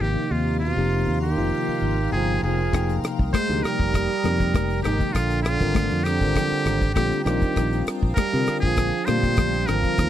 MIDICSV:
0, 0, Header, 1, 8, 480
1, 0, Start_track
1, 0, Tempo, 604169
1, 251, Time_signature, 4, 2, 24, 8
1, 8020, End_track
2, 0, Start_track
2, 0, Title_t, "Ambient pad"
2, 0, Program_c, 0, 92
2, 7, Note_on_c, 0, 77, 72
2, 7, Note_on_c, 0, 82, 80
2, 7, Note_on_c, 0, 84, 86
2, 9, Note_on_c, 0, 70, 80
2, 2147, Note_off_c, 0, 77, 0
2, 2147, Note_off_c, 0, 84, 0
2, 2174, Note_on_c, 0, 87, 97
2, 2175, Note_on_c, 0, 79, 75
2, 4058, Note_off_c, 0, 70, 0
2, 4073, Note_off_c, 0, 87, 0
2, 4089, Note_on_c, 0, 86, 89
2, 4093, Note_on_c, 0, 72, 82
2, 5737, Note_off_c, 0, 82, 0
2, 5753, Note_off_c, 0, 86, 0
2, 5755, Note_off_c, 0, 72, 0
2, 5767, Note_on_c, 0, 77, 78
2, 5768, Note_on_c, 0, 87, 96
2, 5769, Note_on_c, 0, 62, 78
2, 7661, Note_off_c, 0, 79, 0
2, 7670, Note_off_c, 0, 77, 0
2, 7670, Note_off_c, 0, 87, 0
2, 7671, Note_off_c, 0, 62, 0
2, 7689, Note_on_c, 0, 77, 77
2, 7694, Note_on_c, 0, 84, 96
2, 7695, Note_on_c, 0, 70, 82
2, 7697, Note_on_c, 0, 80, 74
2, 8020, Note_off_c, 0, 70, 0
2, 8020, Note_off_c, 0, 77, 0
2, 8020, Note_off_c, 0, 80, 0
2, 8020, Note_off_c, 0, 84, 0
2, 8020, End_track
3, 0, Start_track
3, 0, Title_t, "Muted trumpet"
3, 0, Program_c, 1, 59
3, 4, Note_on_c, 1, 67, 86
3, 249, Note_on_c, 1, 65, 81
3, 261, Note_off_c, 1, 67, 0
3, 466, Note_off_c, 1, 65, 0
3, 470, Note_on_c, 1, 65, 88
3, 929, Note_off_c, 1, 65, 0
3, 964, Note_on_c, 1, 67, 84
3, 1656, Note_off_c, 1, 67, 0
3, 1683, Note_on_c, 1, 68, 89
3, 1910, Note_off_c, 1, 68, 0
3, 1934, Note_on_c, 1, 68, 77
3, 2381, Note_off_c, 1, 68, 0
3, 2646, Note_on_c, 1, 72, 111
3, 2883, Note_on_c, 1, 70, 101
3, 2895, Note_off_c, 1, 72, 0
3, 3829, Note_off_c, 1, 70, 0
3, 3834, Note_on_c, 1, 67, 83
3, 4072, Note_on_c, 1, 65, 92
3, 4084, Note_off_c, 1, 67, 0
3, 4306, Note_off_c, 1, 65, 0
3, 4311, Note_on_c, 1, 65, 104
3, 4796, Note_on_c, 1, 67, 105
3, 4808, Note_off_c, 1, 65, 0
3, 5508, Note_off_c, 1, 67, 0
3, 5513, Note_on_c, 1, 67, 104
3, 5744, Note_off_c, 1, 67, 0
3, 5752, Note_on_c, 1, 67, 88
3, 6237, Note_off_c, 1, 67, 0
3, 6469, Note_on_c, 1, 70, 99
3, 6819, Note_off_c, 1, 70, 0
3, 6832, Note_on_c, 1, 68, 95
3, 7191, Note_on_c, 1, 72, 109
3, 7203, Note_off_c, 1, 68, 0
3, 7679, Note_on_c, 1, 70, 102
3, 7691, Note_off_c, 1, 72, 0
3, 8020, Note_off_c, 1, 70, 0
3, 8020, End_track
4, 0, Start_track
4, 0, Title_t, "Tine electric piano"
4, 0, Program_c, 2, 4
4, 5, Note_on_c, 2, 48, 76
4, 7, Note_on_c, 2, 58, 69
4, 9, Note_on_c, 2, 53, 64
4, 13, Note_on_c, 2, 63, 62
4, 17, Note_on_c, 2, 67, 86
4, 488, Note_off_c, 2, 48, 0
4, 489, Note_off_c, 2, 58, 0
4, 490, Note_off_c, 2, 53, 0
4, 492, Note_off_c, 2, 63, 0
4, 494, Note_off_c, 2, 67, 0
4, 608, Note_on_c, 2, 48, 78
4, 608, Note_on_c, 2, 53, 73
4, 612, Note_on_c, 2, 58, 69
4, 619, Note_on_c, 2, 63, 71
4, 622, Note_on_c, 2, 67, 74
4, 988, Note_off_c, 2, 53, 0
4, 989, Note_off_c, 2, 48, 0
4, 991, Note_off_c, 2, 58, 0
4, 994, Note_off_c, 2, 63, 0
4, 995, Note_off_c, 2, 67, 0
4, 1083, Note_on_c, 2, 48, 81
4, 1083, Note_on_c, 2, 53, 77
4, 1089, Note_on_c, 2, 58, 69
4, 1093, Note_on_c, 2, 63, 71
4, 1097, Note_on_c, 2, 65, 88
4, 1566, Note_off_c, 2, 48, 0
4, 1566, Note_off_c, 2, 53, 0
4, 1569, Note_off_c, 2, 58, 0
4, 1571, Note_off_c, 2, 63, 0
4, 1573, Note_off_c, 2, 65, 0
4, 1674, Note_on_c, 2, 48, 78
4, 1677, Note_on_c, 2, 53, 73
4, 1683, Note_on_c, 2, 58, 61
4, 1688, Note_on_c, 2, 63, 67
4, 1689, Note_on_c, 2, 79, 84
4, 2068, Note_off_c, 2, 48, 0
4, 2070, Note_off_c, 2, 53, 0
4, 2073, Note_off_c, 2, 58, 0
4, 2075, Note_off_c, 2, 63, 0
4, 2075, Note_off_c, 2, 79, 0
4, 2164, Note_on_c, 2, 48, 79
4, 2168, Note_on_c, 2, 53, 73
4, 2170, Note_on_c, 2, 58, 66
4, 2175, Note_on_c, 2, 63, 74
4, 2178, Note_on_c, 2, 79, 91
4, 2644, Note_off_c, 2, 48, 0
4, 2646, Note_off_c, 2, 53, 0
4, 2647, Note_off_c, 2, 58, 0
4, 2649, Note_off_c, 2, 63, 0
4, 2651, Note_off_c, 2, 79, 0
4, 2767, Note_on_c, 2, 48, 75
4, 2772, Note_on_c, 2, 53, 74
4, 2775, Note_on_c, 2, 58, 73
4, 2778, Note_on_c, 2, 63, 73
4, 2785, Note_on_c, 2, 67, 88
4, 3248, Note_off_c, 2, 48, 0
4, 3250, Note_off_c, 2, 53, 0
4, 3251, Note_off_c, 2, 58, 0
4, 3253, Note_off_c, 2, 63, 0
4, 3256, Note_off_c, 2, 67, 0
4, 3360, Note_on_c, 2, 53, 67
4, 3362, Note_on_c, 2, 48, 78
4, 3368, Note_on_c, 2, 58, 67
4, 3371, Note_on_c, 2, 63, 66
4, 3372, Note_on_c, 2, 70, 92
4, 3751, Note_off_c, 2, 53, 0
4, 3752, Note_off_c, 2, 48, 0
4, 3755, Note_off_c, 2, 58, 0
4, 3756, Note_off_c, 2, 63, 0
4, 3757, Note_off_c, 2, 70, 0
4, 3837, Note_on_c, 2, 48, 73
4, 3839, Note_on_c, 2, 53, 72
4, 3844, Note_on_c, 2, 58, 65
4, 3850, Note_on_c, 2, 63, 71
4, 3851, Note_on_c, 2, 56, 89
4, 4084, Note_off_c, 2, 48, 0
4, 4085, Note_off_c, 2, 53, 0
4, 4087, Note_off_c, 2, 58, 0
4, 4090, Note_off_c, 2, 63, 0
4, 4091, Note_off_c, 2, 56, 0
4, 4450, Note_on_c, 2, 50, 76
4, 4452, Note_on_c, 2, 55, 79
4, 4455, Note_on_c, 2, 60, 72
4, 4457, Note_on_c, 2, 65, 74
4, 4460, Note_on_c, 2, 70, 85
4, 4829, Note_off_c, 2, 50, 0
4, 4830, Note_off_c, 2, 55, 0
4, 4832, Note_off_c, 2, 60, 0
4, 4833, Note_off_c, 2, 65, 0
4, 4834, Note_off_c, 2, 70, 0
4, 4933, Note_on_c, 2, 50, 78
4, 4937, Note_on_c, 2, 55, 71
4, 4938, Note_on_c, 2, 60, 73
4, 4944, Note_on_c, 2, 65, 74
4, 4948, Note_on_c, 2, 70, 78
4, 5410, Note_off_c, 2, 50, 0
4, 5412, Note_off_c, 2, 55, 0
4, 5413, Note_off_c, 2, 60, 0
4, 5416, Note_off_c, 2, 65, 0
4, 5418, Note_off_c, 2, 70, 0
4, 5530, Note_on_c, 2, 50, 76
4, 5532, Note_on_c, 2, 55, 64
4, 5533, Note_on_c, 2, 60, 76
4, 5538, Note_on_c, 2, 65, 79
4, 5541, Note_on_c, 2, 67, 96
4, 5757, Note_off_c, 2, 55, 0
4, 5758, Note_off_c, 2, 60, 0
4, 5759, Note_on_c, 2, 62, 76
4, 5764, Note_off_c, 2, 65, 0
4, 5767, Note_on_c, 2, 55, 71
4, 5768, Note_on_c, 2, 60, 77
4, 5770, Note_off_c, 2, 50, 0
4, 5774, Note_on_c, 2, 65, 72
4, 5775, Note_on_c, 2, 70, 85
4, 5776, Note_off_c, 2, 67, 0
4, 6439, Note_off_c, 2, 62, 0
4, 6443, Note_off_c, 2, 55, 0
4, 6443, Note_off_c, 2, 60, 0
4, 6446, Note_off_c, 2, 65, 0
4, 6447, Note_off_c, 2, 70, 0
4, 6618, Note_on_c, 2, 50, 83
4, 6621, Note_on_c, 2, 55, 72
4, 6622, Note_on_c, 2, 60, 67
4, 6625, Note_on_c, 2, 65, 73
4, 6630, Note_on_c, 2, 70, 88
4, 7093, Note_off_c, 2, 50, 0
4, 7094, Note_off_c, 2, 55, 0
4, 7095, Note_off_c, 2, 60, 0
4, 7096, Note_off_c, 2, 65, 0
4, 7099, Note_off_c, 2, 70, 0
4, 7204, Note_on_c, 2, 50, 79
4, 7210, Note_on_c, 2, 55, 70
4, 7212, Note_on_c, 2, 60, 68
4, 7217, Note_on_c, 2, 65, 76
4, 7219, Note_on_c, 2, 72, 86
4, 7593, Note_off_c, 2, 50, 0
4, 7596, Note_off_c, 2, 55, 0
4, 7596, Note_off_c, 2, 60, 0
4, 7599, Note_off_c, 2, 65, 0
4, 7600, Note_off_c, 2, 72, 0
4, 7685, Note_on_c, 2, 50, 84
4, 7691, Note_on_c, 2, 55, 75
4, 7694, Note_on_c, 2, 60, 74
4, 7696, Note_on_c, 2, 65, 72
4, 7697, Note_on_c, 2, 70, 79
4, 8020, Note_off_c, 2, 50, 0
4, 8020, Note_off_c, 2, 55, 0
4, 8020, Note_off_c, 2, 60, 0
4, 8020, Note_off_c, 2, 65, 0
4, 8020, Note_off_c, 2, 70, 0
4, 8020, End_track
5, 0, Start_track
5, 0, Title_t, "Trombone"
5, 0, Program_c, 3, 57
5, 16, Note_on_c, 3, 51, 81
5, 261, Note_on_c, 3, 48, 67
5, 273, Note_off_c, 3, 51, 0
5, 496, Note_off_c, 3, 48, 0
5, 508, Note_on_c, 3, 48, 79
5, 948, Note_off_c, 3, 48, 0
5, 976, Note_on_c, 3, 51, 81
5, 1662, Note_off_c, 3, 51, 0
5, 1702, Note_on_c, 3, 53, 73
5, 1920, Note_off_c, 3, 53, 0
5, 1947, Note_on_c, 3, 53, 65
5, 2387, Note_off_c, 3, 53, 0
5, 2658, Note_on_c, 3, 56, 79
5, 2904, Note_on_c, 3, 55, 99
5, 2916, Note_off_c, 3, 56, 0
5, 3848, Note_off_c, 3, 55, 0
5, 3852, Note_on_c, 3, 51, 75
5, 4090, Note_on_c, 3, 50, 68
5, 4102, Note_off_c, 3, 51, 0
5, 4330, Note_off_c, 3, 50, 0
5, 4338, Note_on_c, 3, 50, 83
5, 4809, Note_off_c, 3, 50, 0
5, 4809, Note_on_c, 3, 50, 95
5, 5514, Note_off_c, 3, 50, 0
5, 5519, Note_on_c, 3, 50, 78
5, 5747, Note_off_c, 3, 50, 0
5, 5753, Note_on_c, 3, 51, 87
5, 6237, Note_off_c, 3, 51, 0
5, 6488, Note_on_c, 3, 55, 74
5, 6829, Note_off_c, 3, 55, 0
5, 6858, Note_on_c, 3, 53, 81
5, 7208, Note_on_c, 3, 55, 91
5, 7220, Note_off_c, 3, 53, 0
5, 7697, Note_on_c, 3, 53, 83
5, 7709, Note_off_c, 3, 55, 0
5, 8020, Note_off_c, 3, 53, 0
5, 8020, End_track
6, 0, Start_track
6, 0, Title_t, "Fingered electric bass"
6, 0, Program_c, 4, 33
6, 6, Note_on_c, 4, 32, 87
6, 120, Note_off_c, 4, 32, 0
6, 246, Note_on_c, 4, 39, 72
6, 574, Note_off_c, 4, 39, 0
6, 611, Note_on_c, 4, 29, 85
6, 827, Note_off_c, 4, 29, 0
6, 852, Note_on_c, 4, 39, 79
6, 1068, Note_off_c, 4, 39, 0
6, 1094, Note_on_c, 4, 29, 83
6, 1197, Note_off_c, 4, 29, 0
6, 1445, Note_on_c, 4, 32, 77
6, 1664, Note_off_c, 4, 32, 0
6, 1685, Note_on_c, 4, 31, 88
6, 1904, Note_off_c, 4, 31, 0
6, 1931, Note_on_c, 4, 29, 88
6, 2147, Note_off_c, 4, 29, 0
6, 2172, Note_on_c, 4, 29, 83
6, 2385, Note_off_c, 4, 29, 0
6, 2536, Note_on_c, 4, 36, 83
6, 2638, Note_off_c, 4, 36, 0
6, 2774, Note_on_c, 4, 38, 74
6, 2877, Note_off_c, 4, 38, 0
6, 3017, Note_on_c, 4, 29, 89
6, 3230, Note_off_c, 4, 29, 0
6, 3373, Note_on_c, 4, 41, 88
6, 3585, Note_off_c, 4, 41, 0
6, 3611, Note_on_c, 4, 29, 100
6, 3824, Note_off_c, 4, 29, 0
6, 3856, Note_on_c, 4, 32, 94
6, 3965, Note_off_c, 4, 32, 0
6, 4092, Note_on_c, 4, 34, 85
6, 4417, Note_off_c, 4, 34, 0
6, 4458, Note_on_c, 4, 32, 87
6, 4671, Note_off_c, 4, 32, 0
6, 4700, Note_on_c, 4, 41, 92
6, 4912, Note_off_c, 4, 41, 0
6, 4934, Note_on_c, 4, 32, 88
6, 5037, Note_off_c, 4, 32, 0
6, 5288, Note_on_c, 4, 32, 91
6, 5503, Note_off_c, 4, 32, 0
6, 5530, Note_on_c, 4, 34, 99
6, 5642, Note_off_c, 4, 34, 0
6, 5767, Note_on_c, 4, 34, 105
6, 5881, Note_off_c, 4, 34, 0
6, 6010, Note_on_c, 4, 34, 95
6, 6224, Note_off_c, 4, 34, 0
6, 6377, Note_on_c, 4, 34, 81
6, 6478, Note_off_c, 4, 34, 0
6, 6622, Note_on_c, 4, 48, 80
6, 6721, Note_off_c, 4, 48, 0
6, 6857, Note_on_c, 4, 34, 83
6, 7070, Note_off_c, 4, 34, 0
6, 7217, Note_on_c, 4, 46, 98
6, 7427, Note_off_c, 4, 46, 0
6, 7449, Note_on_c, 4, 34, 104
6, 7663, Note_off_c, 4, 34, 0
6, 7698, Note_on_c, 4, 32, 99
6, 7806, Note_off_c, 4, 32, 0
6, 7930, Note_on_c, 4, 39, 90
6, 8020, Note_off_c, 4, 39, 0
6, 8020, End_track
7, 0, Start_track
7, 0, Title_t, "Muted fingered electric bass strokes"
7, 1337, Note_on_c, 9, 29, 32
7, 1417, Note_off_c, 9, 29, 0
7, 2403, Note_on_c, 9, 29, 39
7, 2483, Note_off_c, 9, 29, 0
7, 2652, Note_on_c, 9, 29, 32
7, 2732, Note_off_c, 9, 29, 0
7, 2895, Note_on_c, 9, 29, 35
7, 2974, Note_off_c, 9, 29, 0
7, 5175, Note_on_c, 9, 29, 34
7, 5255, Note_off_c, 9, 29, 0
7, 6254, Note_on_c, 9, 29, 44
7, 6333, Note_off_c, 9, 29, 0
7, 6735, Note_on_c, 9, 29, 35
7, 6815, Note_off_c, 9, 29, 0
7, 8020, End_track
8, 0, Start_track
8, 0, Title_t, "Drums"
8, 2171, Note_on_c, 9, 36, 86
8, 2172, Note_on_c, 9, 42, 75
8, 2174, Note_on_c, 9, 62, 27
8, 2181, Note_on_c, 9, 37, 85
8, 2251, Note_off_c, 9, 36, 0
8, 2252, Note_off_c, 9, 42, 0
8, 2253, Note_off_c, 9, 62, 0
8, 2260, Note_off_c, 9, 37, 0
8, 2300, Note_on_c, 9, 42, 45
8, 2379, Note_off_c, 9, 42, 0
8, 2413, Note_on_c, 9, 42, 65
8, 2422, Note_on_c, 9, 37, 90
8, 2492, Note_off_c, 9, 42, 0
8, 2501, Note_off_c, 9, 37, 0
8, 2537, Note_on_c, 9, 36, 88
8, 2616, Note_off_c, 9, 36, 0
8, 2651, Note_on_c, 9, 36, 110
8, 2651, Note_on_c, 9, 42, 89
8, 2653, Note_on_c, 9, 62, 27
8, 2653, Note_on_c, 9, 63, 76
8, 2660, Note_on_c, 9, 37, 90
8, 2731, Note_off_c, 9, 36, 0
8, 2731, Note_off_c, 9, 42, 0
8, 2733, Note_off_c, 9, 62, 0
8, 2733, Note_off_c, 9, 63, 0
8, 2739, Note_off_c, 9, 37, 0
8, 2894, Note_on_c, 9, 42, 58
8, 2903, Note_on_c, 9, 37, 79
8, 2973, Note_off_c, 9, 42, 0
8, 2982, Note_off_c, 9, 37, 0
8, 3016, Note_on_c, 9, 36, 84
8, 3095, Note_off_c, 9, 36, 0
8, 3131, Note_on_c, 9, 36, 92
8, 3132, Note_on_c, 9, 42, 88
8, 3137, Note_on_c, 9, 62, 25
8, 3141, Note_on_c, 9, 37, 88
8, 3210, Note_off_c, 9, 36, 0
8, 3212, Note_off_c, 9, 42, 0
8, 3216, Note_off_c, 9, 62, 0
8, 3220, Note_off_c, 9, 37, 0
8, 3369, Note_on_c, 9, 62, 30
8, 3369, Note_on_c, 9, 63, 64
8, 3372, Note_on_c, 9, 42, 53
8, 3380, Note_on_c, 9, 37, 73
8, 3449, Note_off_c, 9, 62, 0
8, 3449, Note_off_c, 9, 63, 0
8, 3451, Note_off_c, 9, 42, 0
8, 3460, Note_off_c, 9, 37, 0
8, 3496, Note_on_c, 9, 36, 87
8, 3498, Note_on_c, 9, 42, 39
8, 3576, Note_off_c, 9, 36, 0
8, 3578, Note_off_c, 9, 42, 0
8, 3606, Note_on_c, 9, 63, 60
8, 3611, Note_on_c, 9, 36, 119
8, 3611, Note_on_c, 9, 42, 82
8, 3619, Note_on_c, 9, 37, 94
8, 3686, Note_off_c, 9, 63, 0
8, 3690, Note_off_c, 9, 36, 0
8, 3690, Note_off_c, 9, 42, 0
8, 3699, Note_off_c, 9, 37, 0
8, 3736, Note_on_c, 9, 42, 36
8, 3816, Note_off_c, 9, 42, 0
8, 3848, Note_on_c, 9, 42, 59
8, 3857, Note_on_c, 9, 37, 86
8, 3927, Note_off_c, 9, 42, 0
8, 3936, Note_off_c, 9, 37, 0
8, 3974, Note_on_c, 9, 42, 37
8, 3975, Note_on_c, 9, 36, 87
8, 4053, Note_off_c, 9, 42, 0
8, 4055, Note_off_c, 9, 36, 0
8, 4087, Note_on_c, 9, 62, 25
8, 4089, Note_on_c, 9, 36, 80
8, 4089, Note_on_c, 9, 42, 83
8, 4098, Note_on_c, 9, 37, 83
8, 4166, Note_off_c, 9, 62, 0
8, 4169, Note_off_c, 9, 36, 0
8, 4169, Note_off_c, 9, 42, 0
8, 4177, Note_off_c, 9, 37, 0
8, 4214, Note_on_c, 9, 42, 41
8, 4294, Note_off_c, 9, 42, 0
8, 4328, Note_on_c, 9, 42, 54
8, 4337, Note_on_c, 9, 37, 92
8, 4408, Note_off_c, 9, 42, 0
8, 4417, Note_off_c, 9, 37, 0
8, 4452, Note_on_c, 9, 42, 39
8, 4455, Note_on_c, 9, 36, 83
8, 4531, Note_off_c, 9, 42, 0
8, 4534, Note_off_c, 9, 36, 0
8, 4566, Note_on_c, 9, 62, 25
8, 4566, Note_on_c, 9, 63, 82
8, 4568, Note_on_c, 9, 42, 90
8, 4569, Note_on_c, 9, 36, 120
8, 4577, Note_on_c, 9, 37, 92
8, 4645, Note_off_c, 9, 62, 0
8, 4645, Note_off_c, 9, 63, 0
8, 4648, Note_off_c, 9, 42, 0
8, 4649, Note_off_c, 9, 36, 0
8, 4656, Note_off_c, 9, 37, 0
8, 4695, Note_on_c, 9, 42, 30
8, 4774, Note_off_c, 9, 42, 0
8, 4808, Note_on_c, 9, 42, 61
8, 4817, Note_on_c, 9, 37, 78
8, 4888, Note_off_c, 9, 42, 0
8, 4896, Note_off_c, 9, 37, 0
8, 4934, Note_on_c, 9, 36, 78
8, 4935, Note_on_c, 9, 42, 35
8, 5014, Note_off_c, 9, 36, 0
8, 5014, Note_off_c, 9, 42, 0
8, 5048, Note_on_c, 9, 42, 82
8, 5049, Note_on_c, 9, 36, 88
8, 5055, Note_on_c, 9, 62, 23
8, 5055, Note_on_c, 9, 64, 61
8, 5057, Note_on_c, 9, 37, 86
8, 5128, Note_off_c, 9, 36, 0
8, 5128, Note_off_c, 9, 42, 0
8, 5135, Note_off_c, 9, 62, 0
8, 5135, Note_off_c, 9, 64, 0
8, 5137, Note_off_c, 9, 37, 0
8, 5288, Note_on_c, 9, 42, 55
8, 5295, Note_on_c, 9, 62, 25
8, 5296, Note_on_c, 9, 37, 79
8, 5367, Note_off_c, 9, 42, 0
8, 5374, Note_off_c, 9, 62, 0
8, 5376, Note_off_c, 9, 37, 0
8, 5413, Note_on_c, 9, 42, 36
8, 5415, Note_on_c, 9, 36, 82
8, 5493, Note_off_c, 9, 42, 0
8, 5494, Note_off_c, 9, 36, 0
8, 5526, Note_on_c, 9, 42, 87
8, 5529, Note_on_c, 9, 36, 106
8, 5533, Note_on_c, 9, 63, 60
8, 5535, Note_on_c, 9, 37, 91
8, 5606, Note_off_c, 9, 42, 0
8, 5609, Note_off_c, 9, 36, 0
8, 5612, Note_off_c, 9, 63, 0
8, 5615, Note_off_c, 9, 37, 0
8, 5657, Note_on_c, 9, 42, 38
8, 5736, Note_off_c, 9, 42, 0
8, 5768, Note_on_c, 9, 42, 57
8, 5777, Note_on_c, 9, 37, 85
8, 5848, Note_off_c, 9, 42, 0
8, 5857, Note_off_c, 9, 37, 0
8, 5892, Note_on_c, 9, 42, 39
8, 5895, Note_on_c, 9, 36, 91
8, 5971, Note_off_c, 9, 42, 0
8, 5974, Note_off_c, 9, 36, 0
8, 6008, Note_on_c, 9, 42, 82
8, 6009, Note_on_c, 9, 36, 75
8, 6014, Note_on_c, 9, 62, 28
8, 6016, Note_on_c, 9, 37, 75
8, 6087, Note_off_c, 9, 42, 0
8, 6088, Note_off_c, 9, 36, 0
8, 6093, Note_off_c, 9, 62, 0
8, 6096, Note_off_c, 9, 37, 0
8, 6139, Note_on_c, 9, 42, 39
8, 6218, Note_off_c, 9, 42, 0
8, 6251, Note_on_c, 9, 42, 65
8, 6260, Note_on_c, 9, 37, 86
8, 6331, Note_off_c, 9, 42, 0
8, 6340, Note_off_c, 9, 37, 0
8, 6376, Note_on_c, 9, 36, 89
8, 6455, Note_off_c, 9, 36, 0
8, 6489, Note_on_c, 9, 42, 89
8, 6491, Note_on_c, 9, 36, 117
8, 6494, Note_on_c, 9, 62, 27
8, 6494, Note_on_c, 9, 63, 81
8, 6498, Note_on_c, 9, 37, 89
8, 6569, Note_off_c, 9, 42, 0
8, 6570, Note_off_c, 9, 36, 0
8, 6574, Note_off_c, 9, 62, 0
8, 6574, Note_off_c, 9, 63, 0
8, 6577, Note_off_c, 9, 37, 0
8, 6727, Note_on_c, 9, 42, 61
8, 6735, Note_on_c, 9, 37, 76
8, 6806, Note_off_c, 9, 42, 0
8, 6815, Note_off_c, 9, 37, 0
8, 6856, Note_on_c, 9, 36, 82
8, 6936, Note_off_c, 9, 36, 0
8, 6965, Note_on_c, 9, 42, 94
8, 6970, Note_on_c, 9, 36, 87
8, 6974, Note_on_c, 9, 37, 92
8, 6974, Note_on_c, 9, 62, 26
8, 7045, Note_off_c, 9, 42, 0
8, 7050, Note_off_c, 9, 36, 0
8, 7054, Note_off_c, 9, 37, 0
8, 7054, Note_off_c, 9, 62, 0
8, 7204, Note_on_c, 9, 42, 68
8, 7212, Note_on_c, 9, 37, 85
8, 7216, Note_on_c, 9, 62, 31
8, 7216, Note_on_c, 9, 63, 72
8, 7283, Note_off_c, 9, 42, 0
8, 7292, Note_off_c, 9, 37, 0
8, 7296, Note_off_c, 9, 62, 0
8, 7296, Note_off_c, 9, 63, 0
8, 7331, Note_on_c, 9, 42, 35
8, 7336, Note_on_c, 9, 36, 76
8, 7410, Note_off_c, 9, 42, 0
8, 7415, Note_off_c, 9, 36, 0
8, 7443, Note_on_c, 9, 42, 91
8, 7450, Note_on_c, 9, 36, 110
8, 7451, Note_on_c, 9, 37, 87
8, 7452, Note_on_c, 9, 63, 59
8, 7522, Note_off_c, 9, 42, 0
8, 7529, Note_off_c, 9, 36, 0
8, 7531, Note_off_c, 9, 37, 0
8, 7532, Note_off_c, 9, 63, 0
8, 7571, Note_on_c, 9, 42, 36
8, 7650, Note_off_c, 9, 42, 0
8, 7687, Note_on_c, 9, 42, 70
8, 7696, Note_on_c, 9, 37, 93
8, 7767, Note_off_c, 9, 42, 0
8, 7775, Note_off_c, 9, 37, 0
8, 7814, Note_on_c, 9, 42, 36
8, 7817, Note_on_c, 9, 36, 80
8, 7893, Note_off_c, 9, 42, 0
8, 7897, Note_off_c, 9, 36, 0
8, 7929, Note_on_c, 9, 42, 90
8, 7932, Note_on_c, 9, 36, 83
8, 7934, Note_on_c, 9, 62, 29
8, 7938, Note_on_c, 9, 37, 81
8, 8008, Note_off_c, 9, 42, 0
8, 8011, Note_off_c, 9, 36, 0
8, 8013, Note_off_c, 9, 62, 0
8, 8017, Note_off_c, 9, 37, 0
8, 8020, End_track
0, 0, End_of_file